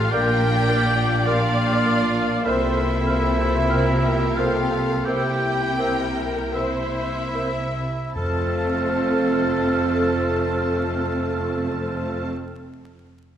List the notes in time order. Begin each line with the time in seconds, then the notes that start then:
Already playing: A1 A2 F4 G4 A4 F5
0.08 A#1 A#2 A#3 D4 F4 G4 A#4 G5 F6
0.13 A#3 D4 D5 G5
0.67 A#3 F4 D5 F6
1.24 A#3 D4 F4 G4 D5 F5 F6
1.28 F5
1.83 A#3 F4 D5 F6
2.43 C2 C3 A#3 C4 E4 F4 A4 C5 E5 F6
3.05 A#3 C5 F6
3.69 C4 G4 A#4 C5 F6
3.73 A#3
4.36 A#3 F4 A4 C5 F5 F6
5.05 C2 C3 A#3 E4 G4 C5 G5 E6
5.77 A#3 A#4 C5 E6
6.52 A#3 E4 C5 E5 E6
7.34 A#3 C5 E6
8.15 F1 F2 A3 C4 F4 A4 C5 A5 F6